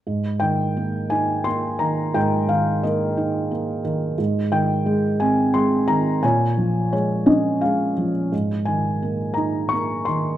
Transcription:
<<
  \new Staff \with { instrumentName = "Felt piano" } { \time 3/4 \key aes \major \tempo 4 = 87 << { r8 g''4 aes''8 c'''8 bes''8 | g''8 f''8 ees''4. r8 | r8 g''4 aes''8 c'''8 bes''8 | aes''4 des''8 ees''8 f''8. r16 |
r8 aes''4 bes''8 des'''8 c'''8 | } \\ { r2. | bes'4 bes'4. r8 | r2. | des''4. r4. |
r2. | } >> }
  \new Staff \with { instrumentName = "Felt piano" } { \clef bass \time 3/4 \key aes \major aes,8 ees8 bes8 ees'8 bes8 ees8 | aes,8 ees8 bes8 ees'8 bes8 ees8 | aes,8 ees8 aes8 c'8 aes8 ees8 | bes,8 f8 aes8 des'8 aes8 f8 |
aes,8 ees8 bes8 ees'8 bes8 ees8 | }
>>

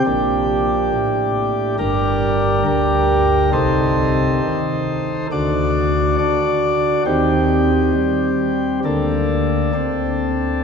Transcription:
<<
  \new Staff \with { instrumentName = "Pipe organ" } { \time 4/4 \key g \minor \tempo 4 = 68 << { g'2 bes'4 bes'4 | c''2 d''4 d''4 | g'2 a'2 | } \\ { d'2 <d' g'>2 | <ees' a'>2 <d' fis'>2 | c'2 <bes d'>4 <c' d'>4 | } >> }
  \new Staff \with { instrumentName = "Pipe organ" } { \clef bass \time 4/4 \key g \minor <bes,, bes,>4 a,4 <g,, g,>4 d,4 | <c, c>4 ees4 <d, d>4 d'4 | <ees, ees>4 g4 <d, d>4 <d, d>4 | }
>>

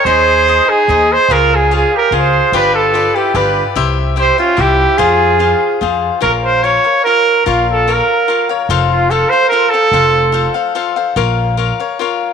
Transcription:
<<
  \new Staff \with { instrumentName = "Cavaquinho" } { \time 3/4 \key aes \major \tempo 4 = 146 <ees' aes' c'' ees''>4 <ees' aes' c'' ees''>4 <ees' aes' c'' ees''>4 | <f' aes' des'' f''>4 <f' aes' des'' f''>4 <f' aes' f''>4 | <f' g' b' d''>4 <f' g' b' d''>8 <g' b' d''>8 <f' g' b' d''>4 | <e' g' c'' e''>4 <e' g' c'' e''>8 <g' c'' e''>8 <e' g' c'' e''>4 |
<f' aes' c'' f''>4 <f' aes' c'' f''>4 <f' aes' c'' f''>4 | \key bes \minor <f' bes' des'' f''>4 <f' bes' des'' f''>8 <bes' des'' f''>8 <f' bes' des'' f''>4 | <f' bes' des'' f''>4 <f' bes' des'' f''>4 <f' bes' des'' f''>8 <bes' des'' f''>8 | <f' a' c'' f''>4 <f' a' c'' f''>8 <a' c'' f''>8 <f' a' c'' f''>8 <a' c'' f''>8 |
<f' a' c'' f''>4 <f' a' c'' f''>8 <a' c'' f''>8 <f' a' c'' f''>8 <a' c'' f''>8 | <f' bes' des'' f''>4 <f' bes' des'' f''>8 <bes' des'' f''>8 <f' bes' des'' f''>4 | }
  \new Staff \with { instrumentName = "Trumpet" } { \time 3/4 \key aes \major c''4. aes'4 c''8 | bes'8 aes'8 aes'8 bes'8 c''4 | b'8 a'4 g'8 b'8. r16 | r4 c''8 f'8 g'4 |
aes'2 r4 | \key bes \minor bes'8 c''8 des''4 bes'4 | f'8 a'8 bes'4. r8 | r8 f'8 a'8 c''8 bes'8 a'8~ |
a'4. r4. | r2. | }
  \new Staff \with { instrumentName = "Trumpet" } { \time 3/4 \key aes \major aes'4. ees'4 aes'8 | f'8 f'8 f'8 g'8 aes'4 | g'8 f'4 e'8 g'8. r16 | r4 g'8 des'8 e'4 |
f'2 r4 | \key bes \minor r2. | r2. | r2. |
r2. | r2. | }
  \new Staff \with { instrumentName = "Upright bass" } { \clef bass \time 3/4 \key aes \major ees,2 ees,4 | des,2 des,4 | g,,2 g,,4 | c,2 c,4 |
f,2 f,4 | \key bes \minor bes,,2 r4 | bes,,2 r4 | f,,2 r4 |
f,,2 r4 | bes,,2 r4 | }
>>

